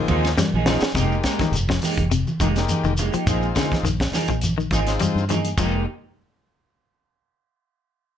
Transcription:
Already playing: A#2 D#3 G#3 A#3 C4 D#4 F4
0.08 D#2 F3 A#3 D#4 G#4, kick, ride bell, high conga, shekere
0.25 snare, ride bell
0.37 G3, snare, high conga, shekere
0.54 A#1 A#3 D#4 G#4, high conga
0.66 F3 G#3 A#3 C4 D#4 F4 G#4, snare, low conga, shekere
0.82 muted fingered electric bass stroke, snare
0.94 F1 C3 G#3 A#3 D#4 G4, kick, snare, closed hi-hat, shekere
1.12 shekere
1.24 G#3 A#3 D#4 G4, kick, snare, closed hi-hat, shekere
1.39 D#3, kick, snare, closed hi-hat, high conga, shekere
1.52 F1, closed hi-hat, shekere
1.69 F3, kick, snare, shekere
1.82 G#3 A#3 D#4 G4, open hi-hat, high conga, low conga, shekere
1.97 F1, kick, closed hi-hat, high conga, shekere
2.11 C3, closed hi-hat, shekere
2.27 high conga, shekere
2.40 F1 D#3 G#3 A#3 D#4 G4, kick, closed hi-hat, high conga, shekere
2.56 G#3 A#3 D#4 G4, snare, closed hi-hat, shekere
2.69 closed hi-hat, high conga, shekere
2.84 F1 D#3, shekere
2.97 G#3 A#3 D#4 G4, closed hi-hat, low conga, shekere
3.13 F3 A#3 D#4 G4, muted fingered electric bass stroke, closed hi-hat, shekere
3.27 A#1 F3 G#3 A#3 C4 D#4 F4 G#4, kick, closed hi-hat, shekere
3.42 shekere
3.56 D3 F3 A#3 D#4 G#4, kick, snare, closed hi-hat, low conga, shekere
3.72 kick, snare, high conga, shekere
3.83 A#1 D#3, closed hi-hat, shekere
4.00 kick, snare, shekere
4.12 F3 A#3 D#4 G#4, muted fingered electric bass stroke, snare, open hi-hat, high conga, low conga, shekere
4.28 A#1 F3, kick, closed hi-hat, shekere
4.41 closed hi-hat, high conga, shekere
4.58 D#3, shekere
4.71 G#1 F3 G#3 A#3 C4 D#4 F4 G#4, kick, closed hi-hat, high conga, shekere
4.87 G#3 C4 D#4 F4, snare, closed hi-hat, shekere
4.99 G3, closed hi-hat, high conga, shekere
5.15 G2, shekere
5.28 F3 A#3 D#4 G#4, muted clean electric guitar stroke, closed hi-hat, high conga, low conga, shekere
5.45 closed hi-hat, shekere
5.57 F1 F3 G#3 A#3 D#4 G4, kick, crash, low conga, shekere

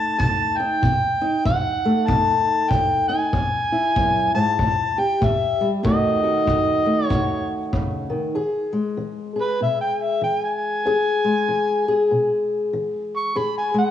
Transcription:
Already playing: B2 A3 D#4 A5
0.18 B2 A5, kick
0.57 D#4 G5
0.82 B2, kick
1.21 D#4
1.45 B2 F#5, kick
1.85 A3
2.07 B2 D#4 A5, kick
2.70 B2 G5, kick
3.09 D#4 G#5
3.33 E2, kick
3.72 E4
3.96 F#2, kick
4.35 G#2 A5
4.58 A2, kick
4.98 G4 G5
5.21 A2 E5, kick
5.61 G3
5.83 B2 D#3 A3 D#4 F#4 D#5, kick
6.23 F#4
6.45 B2, kick
6.86 A3
7.06 B2 C#5
7.10 F#4, kick
7.73 C#3, kick
8.10 D#3
8.35 E2 G#4
8.72 G#3
8.97 E3
9.36 G#4
9.41 B4
9.61 B2 E5
9.81 G5
10.02 E5
10.21 E3 G5
10.44 G#5
10.86 E2 G#4
11.25 G#3
11.49 E3
11.88 G#4
12.11 B2
12.73 E3
13.16 C#6
13.35 E2 G#4 B5
13.58 G#5
13.74 G#3
13.79 F#5

